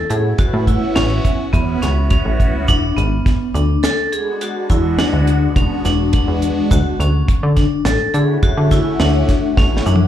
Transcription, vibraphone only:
0.10 G#4
0.39 F#4
0.67 E4
0.96 C#4
1.53 B3
1.82 C#4
2.11 C#4
2.68 D4
2.97 B3
3.54 D4
3.83 A4
4.12 G#4
4.42 F#4
4.70 E4
4.99 D4
5.57 C#4
5.85 D4
6.14 D4
6.71 F#4
7.00 C#4
7.56 D4
7.85 A4
8.14 G#4
8.43 F#4
8.72 E4
9.00 D4
9.57 C#4
9.86 D4

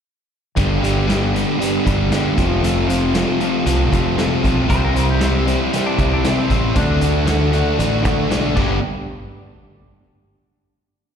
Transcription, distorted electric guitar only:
0.57 G2 D3 G3 B3 D4 G4
0.84 G2 D3 G3 B3 D4 G4
1.09 G2 D3 G3 B3 D4 G4
1.33 G2 D3 G3 B3 D4 G4
1.59 G2 D3 G3 B3 D4 G4
1.86 G2 D3 G3 B3 D4 G4
2.11 G2 D3 G3 B3 D4 G4
2.38 F2 C3 F3 A3 C4 F4
2.63 F2 C3 F3 A3 C4 F4
2.88 F2 C3 F3 A3 C4 F4
3.15 F2 C3 F3 A3 C4 F4
3.40 F2 C3 F3 A3 C4 F4
3.66 F2 C3 F3 A3 C4 F4
3.93 F2 C3 F3 A3 C4 F4
4.18 F2 C3 F3 A3 C4 F4
4.45 F2 C3 F3 A3 C4 F4
4.69 C3 E3 G3 C4 E4
4.95 C3 E3 G3 C4 E4
5.21 C3 E3 G3 C4 E4
5.46 C3 E3 G3 C4 E4
5.73 C3 E3 G3 C4 E4
5.99 C3 E3 G3 C4 E4
6.25 C3 E3 G3 C4 E4
6.51 C3 E3 G3 C4 E4
6.77 D3 A3 D4 F#4
7.03 D3 A3 D4 F#4
7.28 D3 A3 D4 F#4
7.53 D3 A3 D4 F#4
7.80 D3 A3 D4 F#4
8.06 D3 A3 D4 F#4
8.31 D3 A3 D4 F#4
8.57 G2 D3 G3 B3 D4 G4

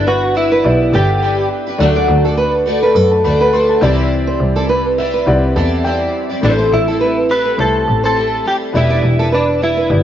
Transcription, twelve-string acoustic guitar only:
Already playing: D4 E4 B4
0.35 B3 D4 E4 B4
0.93 B3 D4 E4 B4
1.22 B3 D4 E4 B4
1.67 D4 E4 B4
1.80 D3 F#3 A3 D4 F#4 D5
2.25 A3 D4 F#4 D5
2.66 A3 D4 F#4 D5
3.24 A3 D4 F#4 D5
3.52 A3 D4 F#4 D5
3.82 C3 E3 G3 C4 E4 D5
4.55 G3 C4 E4 D5
4.98 G3 C4 E4 D5
5.56 G3 C4 E4 D5
5.85 G3 C4 E4 D5
6.30 G3 C4 E4 D5
6.43 A2 E3 G3 C4 E4 A4
6.88 G3 C4 E4 A4
7.29 G3 C4 E4 A4
8.03 G3 C4 E4 A4
8.16 G3 C4 E4 A4
8.45 G3 C4 E4 A4
8.75 E3 G3 D4 E4 B4
9.19 D4 E4 B4
9.61 G3 D4 E4 B4

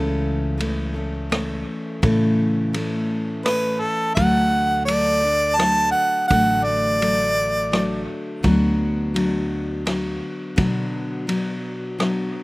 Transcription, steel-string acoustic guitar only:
Already playing: C#3 E3 A3 C#4 A4
0.58 E3 A3 C#4 A4
0.94 A3 C#4 A4
1.30 E3 A3 C#4 A4
2.02 C#3 E3 A3 C#4 A4
2.73 E3 A3 C#4 A4
3.45 E3 A3 C#4 A4
4.16 D3 F#3 A3 D4 A4
4.87 F#3 A3 D4 A4
5.23 A3 D4 A4
5.58 F#3 A3 D4 A4
6.29 D3 F#3 A3 D4 A4
7.00 F#3 A3 D4 A4
7.72 F#3 A3 D4 A4
8.43 D3 F#3 B3 D4 F#4
9.14 F#3 B3 D4 F#4
9.85 F#3 B3 D4 F#4
10.56 D3 F#3 B3 D4 F#4
11.27 F#3 B3 D4 F#4
11.98 F#3 B3 D4 F#4

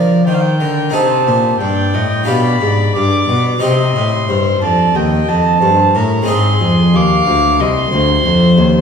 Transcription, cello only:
Already playing: F3
0.26 D#3
0.61 D3
0.94 C3
1.27 A#2
1.61 G2
1.95 A2
2.29 B2
2.62 G#2
2.95 G2
3.29 B2
3.62 C3
3.96 A2
4.30 G2
4.62 F2
4.96 D#2
5.29 F2
5.62 G2
5.95 A2
6.29 G#2
6.61 F2
6.95 D#2
7.27 D2
7.60 C2
7.92 D2
8.25 F2
8.58 D#2

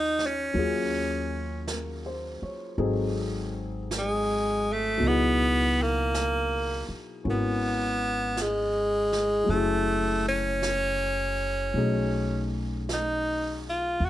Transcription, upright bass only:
Already playing: D#2
0.55 D#2
2.42 muted upright bass stroke
2.78 G#1
5.01 C#2
6.89 muted upright bass stroke
7.25 G#1
9.49 F#1
11.74 B1
14.00 E2

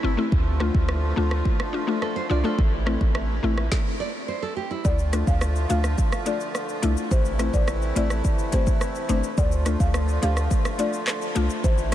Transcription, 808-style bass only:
0.04 G1
0.32 D2
0.74 D2
1.17 D2
2.30 C2
2.58 A1
3.01 A1
3.43 A1
4.85 D2
5.27 D2
5.70 D2
6.83 C2
7.11 A1
7.54 A1
7.96 A1
9.09 G1
9.38 D2
9.80 D2
10.23 D2
11.36 C2
11.64 A1

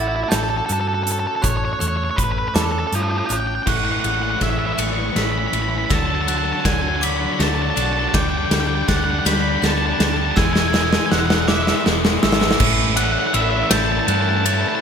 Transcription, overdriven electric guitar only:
3.66 A2 E3
3.72 A2 E3
3.82 A2 E3
3.89 A2 E3
3.97 A2 E3
4.05 A2 E3
4.13 A2 E3
4.19 A2 E3
4.28 A2 E3
4.36 A2 E3
4.44 A2 E3
4.51 A2 E3
4.59 A2 E3
4.67 A2 E3
4.74 A2 E3
4.82 A2 E3
4.90 A2 E3
4.97 A2 E3
5.04 A2 E3
5.12 A2 E3
5.20 A2 E3
5.28 A2 E3
5.35 A2 E3
5.44 A2 E3
5.52 A2 E3
5.59 A2 E3
5.67 A2 E3
5.75 A2 E3
5.82 A2 E3
5.90 D3 F#3
5.98 D3 F#3
6.04 D3 F#3
6.13 D3 F#3
6.21 D3 F#3
6.28 D3 F#3
6.35 D3 F#3
6.43 D3 F#3
6.51 D3 F#3
6.58 D3 F#3
6.67 D3 F#3
6.74 D3 F#3
6.82 D3 F#3
6.89 D3 F#3
6.96 D3 F#3
7.04 D3 F#3
7.11 D3 F#3
7.20 D3 F#3
7.27 D3 F#3
7.35 D3 F#3
7.44 D3 F#3
7.50 D3 F#3
7.58 D3 F#3
7.66 D3 F#3
7.74 D3 F#3
7.82 D3 F#3
7.89 D3 F#3
7.96 D3 F#3
8.05 D3 F#3
8.13 D3 G3
8.20 D3 G3
8.28 D3 G3
8.37 D3 G3
8.43 D3 G3
8.51 D3 G3
8.59 D3 G3
8.67 D3 G3
8.75 D3 G3
8.82 D3 G3
8.90 D3 G3
8.97 D3 G3
9.05 D3 G3
9.13 D3 G3
9.21 D3 G3
9.28 D3 G3
9.36 D3 G3
9.43 D3 G3
9.52 D3 G3
9.60 D3 G3
9.68 D3 G3
9.74 D3 G3
9.83 D3 G3
9.89 D3 G3
9.98 D3 G3
10.05 D3 G3
10.13 D3 G3
10.21 D3 G3
10.28 D3 G3
10.37 E3 G#3
10.44 E3 G#3
10.52 E3 G#3
10.59 E3 G#3
10.68 E3 G#3
10.76 E3 G#3
10.83 E3 G#3
10.91 E3 G#3
10.99 E3 G#3
11.06 E3 G#3
11.14 E3 G#3
11.22 E3 G#3
11.28 E3 G#3
11.36 E3 G#3
11.44 E3 G#3
11.52 E3 G#3
11.60 E3 G#3
11.67 E3 G#3
11.75 E3 G#3
11.83 E3 G#3
11.90 E3 G#3
11.97 E3 G#3
12.05 E3 G#3
12.13 E3 G#3
12.21 E3 G#3
12.29 E3 G#3
12.37 E3 G#3
12.44 E3 G#3
12.52 E3 G#3
12.60 A2 E3 A3 C#4 E4
12.97 A2 E3 A3 C#4 E4
13.33 A2 E3 A3 C#4 E4
13.71 A2 E3 A3 C#4 E4
14.07 A2 E3 A3 C#4 E4
14.44 A2 E3 A3 C#4 E4

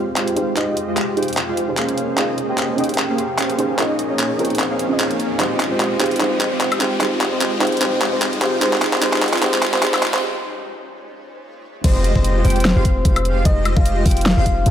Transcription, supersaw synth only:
0.16 G#3 F4 G4 C5 F5
0.57 G#3 F4 G4 C5 D#5
0.88 G#3 F4 G4 C5 D#5
1.17 G#3 F4 G4 C5 G5
1.48 G#3 F4 G4 C5 F5
1.77 A#3 C#4 G#4 C5 F5
2.18 A#3 C#4 G#4 C5 D#5
2.49 A#3 C#4 G#4 C5 D#5
2.78 A#3 C#4 G#4 C5 G5
3.09 A#3 C#4 G#4 C5 F5
3.39 A#3 C#4 G#4 C5 F5
3.79 A#3 D#4 G#4 C#5 D#5
4.10 A#3 D#4 G#4 C#5 D#5
4.39 A#3 D#4 G#4 C#5 G5
4.70 A#3 D#4 G#4 C#5 F5
5.00 A#3 D#4 G#4 C#5 F5
5.40 G#3 F4 G4 C5 D#5
5.71 G#3 F4 G4 C5 D#5
6.00 G#3 F4 G4 C5 G5
6.20 G#3 F4 G4 C5 D#5
6.52 G#3 F4 G4 C5 D#5
6.81 G#3 F4 G4 C5 G5
7.01 G#3 F4 G4 C5 D#5
7.32 G#3 F4 G4 C5 D#5
7.61 G#3 F4 G4 C5 G5
7.81 G#3 F4 G4 C5 D#5
8.13 G#3 F4 G4 C5 D#5
8.42 G#3 F4 G4 C5 G5
8.62 G#3 F4 G4 C5 D#5
8.93 G#3 F4 G4 C5 D#5
9.02 G#3 F4 G4 C5 D#5
9.33 G#3 F4 G4 C5 D#5
9.43 G#3 F4 G4 C5 D#5
9.74 G#3 F4 G4 C5 D#5
9.83 G#3 F4 G4 C5 D#5
10.14 G#3 F4 G4 C5 D#5
11.84 G#3 F4 G4 C5 D#5
12.16 G#3 G4 C5 D#5
12.45 G#3 F4 G4 C5 G5
12.76 G#3 F4 G4 C5 F5
13.05 G#3 F4 G4 C5 F5
13.45 G#3 G4
13.77 G#3 F4 G4 C5 D#5
14.06 F4 G4 C5
14.37 G#3 F4 G4 C5 F5
14.66 A#3 C#4 G#4 C5 F5

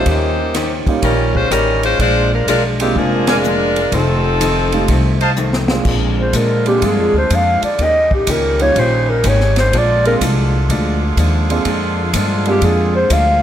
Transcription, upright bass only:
0.06 D#2
0.86 muted upright bass stroke
1.02 A#1
1.51 A1
1.99 A#1
2.47 B1
2.95 F1
3.92 F1
4.88 C2
5.85 A#1
6.33 A#2
6.82 G2
6.98 F2
7.13 D2
7.30 F2
7.62 muted upright bass stroke
7.79 D#2
8.27 C#2
8.75 A#1
9.24 G#1
9.72 A#1
10.20 C2
10.69 D2
11.17 D#2
11.65 F2
12.13 G2
12.62 F2
13.10 D2

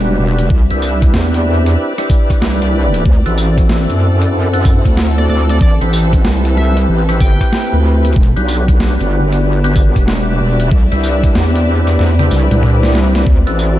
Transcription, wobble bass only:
Already playing: E1
0.18 E1
0.50 C2
0.71 C2
1.14 E2
2.42 C2
3.05 D2
3.26 A1
3.70 A1
3.90 F#2
4.85 D2
5.29 D2
5.61 A1
5.81 A1
6.24 C2
6.88 A1
7.21 G1
7.72 D2
8.16 E1
8.36 B1
8.80 B1
9.00 G1
9.96 E1
10.39 E1
10.71 C2
10.91 C2
11.35 E2
11.99 E2
12.31 C2
12.51 C2
13.26 D2
13.47 A1

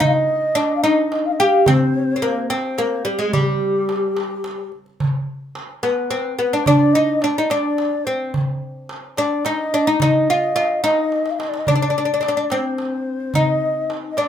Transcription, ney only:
0.01 D#5
0.07 F5
0.13 D#5
0.76 F5
0.82 D#5
1.25 F5
1.32 D#5
1.39 F5
1.67 C5
2.49 C5
3.07 G4
3.20 G4 G#4
3.27 G#4
3.34 G4
5.83 B4
6.37 B4
6.64 D5
6.93 D#5
7.21 D5
7.49 D5
8.04 C5
9.17 D5
9.45 D#5
10.01 D#5
10.84 D#5
11.30 F5
11.38 D#5
11.48 D5
11.58 D#5
11.66 D5
12.51 C5
13.35 D#5
14.11 D#5
14.19 D5

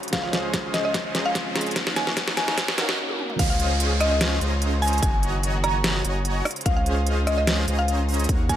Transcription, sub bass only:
0.13 C#2
1.15 C#2
1.76 D#2
2.78 D#2
3.39 C#2
4.41 C#2
5.03 F#1
6.05 F#1
6.66 C#2
7.68 C#2
8.29 D#2

